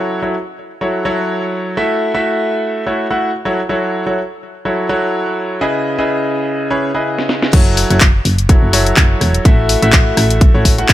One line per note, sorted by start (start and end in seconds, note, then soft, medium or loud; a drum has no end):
0.00 0.19 F#3 medium
0.00 0.19 E4 medium
0.00 0.19 F#4 medium
0.00 0.19 A4 medium
0.00 0.19 C#5 loud
0.22 0.34 F#3 medium
0.22 0.34 E4 medium
0.22 0.34 F#4 medium
0.22 0.34 A4 medium
0.22 0.34 C#5 medium
0.81 1.03 F#3 medium
0.81 1.03 E4 medium
0.81 1.03 F#4 medium
0.81 1.03 A4 medium
0.81 1.03 C#5 medium
1.05 1.75 F#3 loud
1.05 1.75 E4 medium
1.05 1.75 F#4 medium
1.05 1.75 A4 medium
1.05 1.75 C#5 loud
1.77 2.11 A3 loud
1.77 2.11 E4 medium
1.77 2.11 F#4 medium
1.77 2.11 A4 medium
1.77 2.11 E5 loud
2.14 2.83 A3 medium
2.14 2.83 E4 medium
2.14 2.83 F#4 medium
2.14 2.83 A4 medium
2.14 2.83 E5 loud
2.86 3.06 A3 medium
2.86 3.06 E4 medium
2.86 3.06 F#4 medium
2.86 3.06 A4 medium
2.86 3.06 C#5 medium
3.10 3.30 A3 medium
3.10 3.30 E4 medium
3.10 3.30 F#4 medium
3.10 3.30 A4 medium
3.10 3.30 F#5 medium
3.45 3.59 F#3 medium
3.45 3.59 E4 medium
3.45 3.59 F#4 medium
3.45 3.59 A4 medium
3.45 3.59 C#5 medium
3.69 4.03 F#3 medium
3.69 4.03 E4 medium
3.69 4.03 F#4 medium
3.69 4.03 A4 medium
3.69 4.03 C#5 medium
4.06 4.18 F#3 medium
4.06 4.18 E4 medium
4.06 4.18 F#4 medium
4.06 4.18 A4 medium
4.06 4.18 C#5 medium
4.65 4.87 F#3 medium
4.65 4.87 E4 medium
4.65 4.87 F#4 medium
4.65 4.87 A4 medium
4.65 4.87 C#5 medium
4.89 5.59 F#3 loud
4.89 5.59 E4 medium
4.89 5.59 F#4 medium
4.89 5.59 A4 medium
4.89 5.59 C#5 loud
5.61 5.95 C#3 medium
5.61 5.95 E4 medium
5.61 5.95 G#4 medium
5.61 5.95 B4 medium
5.61 5.95 D#5 loud
5.99 6.67 C#3 loud
5.99 6.67 E4 medium
5.99 6.67 G#4 medium
5.99 6.67 B4 medium
5.99 6.67 D#5 loud
6.70 6.90 C#3 medium
6.70 6.90 E4 medium
6.70 6.90 G#4 medium
6.70 6.90 B4 medium
6.70 6.90 C#5 loud
6.94 7.51 C#3 medium
6.94 7.51 E4 medium
6.94 7.51 G#4 medium
6.94 7.51 B4 medium
6.94 7.51 D#5 medium
7.18 snare medium
7.29 snare medium
7.42 snare medium
7.53 7.85 F#1 loud
7.53 7.87 F#3 medium
7.53 7.87 E4 medium
7.53 7.87 F#4 medium
7.53 7.87 A4 medium
7.53 7.87 C#5 loud
7.53 kick loud
7.53 closed hi-hat medium
7.53 crash loud
7.77 open hi-hat loud
7.90 8.21 F#1 medium
7.90 8.02 F#3 medium
7.90 8.02 E4 medium
7.90 8.02 F#4 medium
7.90 8.02 A4 medium
7.90 8.02 C#5 medium
7.90 closed hi-hat medium
8.01 kick loud
8.01 clap loud
8.01 closed hi-hat medium
8.25 8.57 F#1 loud
8.25 open hi-hat medium
8.38 closed hi-hat medium
8.49 8.71 F#3 medium
8.49 8.71 E4 medium
8.49 8.71 F#4 medium
8.49 8.71 A4 medium
8.49 8.71 C#5 medium
8.49 kick loud
8.49 closed hi-hat medium
8.62 8.93 F#1 medium
8.73 9.43 F#3 loud
8.73 9.43 E4 medium
8.73 9.43 F#4 medium
8.73 9.43 A4 medium
8.73 9.43 C#5 loud
8.73 open hi-hat loud
8.86 closed hi-hat medium
8.97 9.15 F#1 medium
8.97 kick loud
8.97 clap loud
8.97 closed hi-hat medium
9.21 9.39 E1 loud
9.21 cross-stick medium
9.21 open hi-hat medium
9.34 closed hi-hat medium
9.45 9.77 A1 loud
9.45 9.79 A3 loud
9.45 9.79 E4 medium
9.45 9.79 F#4 medium
9.45 9.79 A4 medium
9.45 9.79 E5 loud
9.45 kick loud
9.45 closed hi-hat medium
9.69 open hi-hat loud
9.82 10.13 A1 medium
9.82 10.51 A3 loud
9.82 10.51 E4 medium
9.82 10.51 F#4 medium
9.82 10.51 A4 medium
9.82 10.51 E5 loud
9.82 closed hi-hat medium
9.93 kick loud
9.93 clap loud
9.93 closed hi-hat medium
10.17 10.49 A1 medium
10.17 cross-stick medium
10.17 open hi-hat loud
10.30 closed hi-hat medium
10.41 kick loud
10.41 closed hi-hat medium
10.54 10.85 A1 medium
10.54 10.74 A3 medium
10.54 10.74 E4 medium
10.54 10.74 F#4 medium
10.54 10.74 A4 medium
10.54 10.74 C#5 loud
10.65 kick medium
10.65 open hi-hat loud
10.78 10.93 A3 medium
10.78 10.93 E4 medium
10.78 10.93 F#4 medium
10.78 10.93 A4 medium
10.78 10.93 F#5 loud
10.78 closed hi-hat medium
10.89 10.93 A1 loud
10.89 kick loud
10.89 clap loud
10.89 closed hi-hat medium